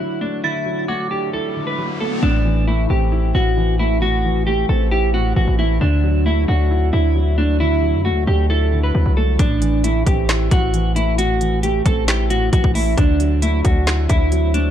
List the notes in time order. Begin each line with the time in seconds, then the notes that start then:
Already playing: D3 A3 D4 E4 F#6
0.00 F#3
0.21 A3 D4
0.44 D3 E4 A6, riser
0.66 F#3
0.88 A3 F#4 D6
1.11 D4 G4
1.33 E4 A4
1.56 D3
1.67 B4
1.78 F#3
2.00 A3 A4
2.23 A1 A2 D4
2.45 E3
2.68 A3 E4
2.90 A1 C4 G4
3.12 E4
3.35 A1 A2 F#4
3.57 E3
3.79 A3 E4
4.02 A2 F#4
4.25 E3
4.47 A3 G4
4.69 A1 C4 A4
4.91 E4 G4
5.14 A2 F#4
5.36 A1 E3 F#4
5.48 A1
5.59 A3 E4
5.81 D2 D3 D4
6.04 F#3
6.26 A3 E4
6.48 D2 D4 F#4
6.71 E4
6.93 D2 D3 E4
7.15 F#3
7.38 A3 D4
7.60 D3 E4
7.82 F#3
7.94 F#2
8.05 A3 F#4
8.11 D2
8.27 D2 D4 G4
8.50 E4 A4
8.73 D3
8.83 B4
8.95 D2 F#3
9.06 C2
9.17 A3 A4
9.39 A1 A2 D4, kick, closed hi-hat
9.62 E3, closed hi-hat
9.84 A3 E4, closed hi-hat
10.06 A1 C4 G4, kick, closed hi-hat
10.29 E4, snare, clap, closed hi-hat
10.51 A1 A2 F#4, kick, closed hi-hat
10.74 E3, closed hi-hat
10.96 A3 E4, closed hi-hat
11.18 A2 F#4, closed hi-hat
11.41 E3, closed hi-hat
11.63 A3 G4, closed hi-hat
11.86 A1 C4 A4, kick, closed hi-hat
12.08 E4 G4, snare, clap, closed hi-hat
12.30 A2 F#4, closed hi-hat
12.53 A1 E3 F#4, kick, closed hi-hat
12.64 A1, kick
12.75 A3 E4, open hi-hat
12.97 D2 D3 D4, kick, closed hi-hat, swell
13.20 F#3, closed hi-hat
13.42 A3 E4, closed hi-hat
13.64 D2 D4 F#4, kick, closed hi-hat
13.87 E4, snare, clap, closed hi-hat
14.09 D2 D3 E4, kick, closed hi-hat
14.32 F#3, closed hi-hat
14.54 A3 D4, closed hi-hat